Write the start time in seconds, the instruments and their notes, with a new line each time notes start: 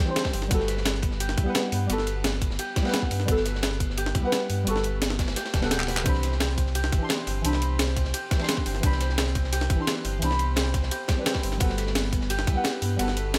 Already playing: synth stab E3 D4 B5 C6, harp C4 E4 G4 C5
0.00 harp G3
0.04 synth stab E3 C4 D4
0.10 synth stab C5
0.16 harp C4, snare, closed hi-hat, ride
0.25 kick, snare, ride
0.33 sub bass G1, harp C4, open hi-hat
0.42 snare, ride
0.48 sub bass G1, synth stab G3 B3 F#4, harp B3, kick, closed hi-hat, ride
0.54 synth stab A4
0.60 snare
0.68 harp B4, snare, closed hi-hat, ride
0.77 snare
0.85 harp B3, snare, closed hi-hat, ride
0.94 snare
1.02 harp B3, kick, closed hi-hat, ride
1.11 sub bass G1, snare
1.20 harp G4, closed hi-hat, ride
1.29 snare
1.37 sub bass D2, harp E4, kick, closed hi-hat, ride
1.43 synth stab G3 B3 F#5
1.49 synth stab B4
1.54 harp B3, snare, closed hi-hat, ride
1.72 sub bass G2, harp B3, open hi-hat, ride
1.87 sub bass G1, synth stab G3 B3 F#4, harp B3, closed hi-hat, ride
1.93 synth stab A4
1.98 snare
2.07 harp B4, closed hi-hat, ride
2.24 harp B3, snare, closed hi-hat, ride
2.33 snare
2.41 harp B3, kick, closed hi-hat, ride
2.50 sub bass G1, snare
2.59 harp G4, closed hi-hat, ride
2.76 harp E4, kick, snare, closed hi-hat, ride
2.82 synth stab G3 B3 F#5, snare, ride
2.88 synth stab B4, snare, ride
2.93 harp B3, snare, closed hi-hat, ride
3.02 kick
3.11 sub bass G2, harp B3, open hi-hat, ride
3.20 snare
3.25 sub bass G1, synth stab G3 B3 F#4, harp B3, kick, closed hi-hat, ride
3.31 synth stab A4
3.37 snare
3.46 harp B4, snare, closed hi-hat, ride
3.55 snare
3.63 harp B3, snare, closed hi-hat, ride
3.72 snare
3.80 harp B3, kick, closed hi-hat, ride
3.89 sub bass G1, snare
3.97 harp G4, closed hi-hat, ride
4.06 snare
4.15 sub bass D2, harp E4, kick, closed hi-hat, ride
4.21 synth stab G3 B3 F#5
4.26 synth stab B4
4.32 harp B3, snare, closed hi-hat, ride
4.50 sub bass G2, harp B3, open hi-hat, ride
4.64 sub bass G1, synth stab G3 B3 F#4, harp B3, closed hi-hat, ride
4.70 synth stab A4
4.76 snare
4.83 harp B4, closed hi-hat, ride
5.02 harp B3, snare, closed hi-hat, ride
5.10 snare
5.19 harp B3, kick, snare, closed hi-hat, ride
5.28 sub bass G1, snare, ride
5.36 harp G4, snare, closed hi-hat, ride
5.45 snare, ride
5.54 sub bass D1, harp B2, kick, snare, closed hi-hat, ride
5.59 synth stab G3 B3 F#5, snare, ride
5.65 synth stab A4
5.71 harp G4, snare, closed hi-hat, ride
5.80 clap
5.87 harp B4, snare, open hi-hat, ride
5.96 snare, clap, ride
6.03 sub bass C2, synth stab E3 C4 D4, harp C4, kick, closed hi-hat, ride
6.09 synth stab B5
6.14 snare
6.23 harp C5, snare, closed hi-hat, ride
6.32 snare
6.40 harp C4, snare, closed hi-hat, ride
6.49 snare
6.57 harp C4, kick, closed hi-hat, ride
6.66 sub bass C2, snare
6.75 harp G4, closed hi-hat, ride
6.84 snare
6.92 sub bass G1, harp E4, kick, closed hi-hat, ride
6.98 synth stab E3 D4
7.04 synth stab C6
7.09 harp B3, snare, closed hi-hat, ride
7.27 sub bass G1, harp C4, open hi-hat, ride
7.42 sub bass C2, synth stab E3 D4, harp C4, closed hi-hat, ride
7.47 synth stab B5
7.53 snare
7.62 harp C5, closed hi-hat, ride
7.79 harp C4, snare, closed hi-hat, ride
7.88 snare
7.96 harp C4, kick, closed hi-hat, ride
8.05 sub bass C2, snare
8.14 harp G4, closed hi-hat, ride
8.31 harp E4, kick, snare, closed hi-hat, ride
8.37 synth stab E3 D4, snare, ride
8.43 synth stab C6, snare, ride
8.49 harp B3, snare, closed hi-hat, ride
8.57 kick
8.66 sub bass G1, harp C4, open hi-hat, ride
8.75 snare
8.80 sub bass C2, synth stab E3 D4, harp C4, kick, closed hi-hat, ride
8.86 synth stab B5
8.92 snare
9.00 harp C5, snare, closed hi-hat, ride
9.09 snare
9.18 harp C4, snare, closed hi-hat, ride
9.27 snare
9.35 harp C4, kick, closed hi-hat, ride
9.44 sub bass C2, snare
9.53 harp G4, closed hi-hat, ride
9.61 snare
9.70 sub bass G1, harp E4, kick, closed hi-hat, ride
9.76 synth stab E3 D4
9.82 synth stab C6
9.87 harp B3, snare, closed hi-hat, ride
10.05 sub bass G1, harp C4, open hi-hat, ride
10.19 sub bass C2, synth stab E3 D4, harp C4, closed hi-hat, ride
10.25 synth stab B5
10.31 snare
10.39 harp C5, closed hi-hat, ride
10.56 harp C4, snare, closed hi-hat, ride
10.65 snare
10.74 harp C4, kick, closed hi-hat, ride
10.82 sub bass C2, snare
10.91 harp G4, closed hi-hat, ride
11.08 harp G3, kick, snare, closed hi-hat, ride
11.14 synth stab E3 C4 D4
11.20 synth stab B4
11.26 harp C4, snare, closed hi-hat, ride
11.34 kick, snare, ride
11.43 sub bass G1, harp C4, open hi-hat
11.52 snare, ride
11.58 sub bass G1, synth stab G3 B3 F#4, harp B3, kick, closed hi-hat, ride
11.63 synth stab A4
11.69 snare
11.78 harp B4, snare, closed hi-hat, ride
11.86 snare
11.95 harp B3, snare, closed hi-hat, ride
12.04 snare
12.12 harp B3, kick, closed hi-hat, ride
12.21 sub bass G1, snare
12.30 harp G4, closed hi-hat, ride
12.39 snare
12.47 sub bass D2, harp E4, kick, closed hi-hat, ride
12.53 synth stab G3 B3 F#5
12.59 synth stab B4
12.64 harp B3, snare, closed hi-hat, ride
12.82 sub bass G2, harp B3, open hi-hat, ride
12.96 sub bass G1, synth stab G3 B3 F#4, harp B3, closed hi-hat, ride
13.02 synth stab A4
13.07 snare
13.17 harp B4, closed hi-hat, ride
13.34 harp B3, snare, closed hi-hat, ride